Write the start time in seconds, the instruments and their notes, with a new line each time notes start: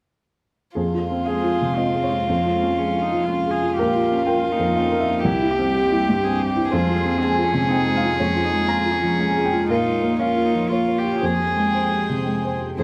0.75 felt piano F2 G#4, analog synth pad G#3 F4 C5, violin F4
0.94 felt piano F4
1.11 felt piano C4
1.26 cello G#4, felt piano G#4 F5
1.44 felt piano F4
1.61 felt piano C3
1.77 cello C4, felt piano C4 D#5
1.94 felt piano G#4
2.03 felt piano C#5
2.12 felt piano F4
2.27 felt piano F2, analog synth pad F5
2.45 felt piano F4
2.63 felt piano C#4
2.78 cello C#4, felt piano G#4
2.95 felt piano F4
3.02 cello D#4
3.12 felt piano F3
3.26 felt piano C#4, cello F4
3.46 felt piano G#4
3.50 cello G#4
3.63 felt piano F4
3.77 felt piano A#1 A#4, analog synth pad A#3, violin F4, cello G4
3.95 felt piano F4
4.12 felt piano C#4
4.26 cello F4, felt piano A#4 G5
4.44 felt piano F4
4.52 cello D#4
4.59 felt piano F2
4.76 felt piano C#4 F5
4.92 felt piano A#4
4.99 felt piano E5
5.09 felt piano F4
5.24 felt piano C2, analog synth pad G3 G4 C5, cello E4, violin G4
5.42 felt piano E4
5.50 cello G4
5.59 felt piano C4
5.75 felt piano G4
5.92 felt piano E4
6.09 felt piano G2
6.24 felt piano C4, cello G#4
6.40 felt piano G4
6.47 cello G4
6.56 felt piano E4
6.71 felt piano F2 C5, analog synth pad G#3 F4, cello F4, violin G#4
6.89 felt piano F4
7.06 felt piano C4
7.20 cello C4, felt piano G#4 G#5
7.38 felt piano F4
7.44 cello C#4
7.54 felt piano C3
7.69 felt piano C4 G5, cello D#4
7.87 felt piano G#4
7.97 felt piano F5
8.04 felt piano F4
8.18 felt piano F2 C#5, cello C#4, analog synth pad G#4
8.36 felt piano F4
8.45 cello D#4
8.53 felt piano G#3
8.68 cello F4, felt piano G#4 A#5
8.85 felt piano F4
8.93 cello C#4
9.02 felt piano F3
9.19 felt piano G#3 G#5
9.36 felt piano G#4
9.45 felt piano G5
9.52 felt piano F4
9.69 felt piano A#2 A#4, analog synth pad A#3 C#5, cello D#4, violin F4
9.86 felt piano F4
10.02 felt piano A#3
10.19 cello C#4, violin F4, felt piano C#5 F5
10.36 felt piano F4
10.45 cello D#4
10.54 felt piano F3
10.70 felt piano A#3 C#5, cello F4, violin F4
10.88 felt piano C#5
10.98 violin G4
11.05 felt piano F4
11.21 felt piano F2 C5, analog synth pad G#3 C5 G5, cello G#4, violin G#4
11.40 felt piano G4
11.57 felt piano G#3
11.74 felt piano C5
11.91 felt piano G4
12.09 felt piano C3
12.26 felt piano G#3
12.44 felt piano C5
12.61 felt piano G4
12.76 felt piano F2 G#4, analog synth pad G#3 F4 C5, cello C4, violin G#4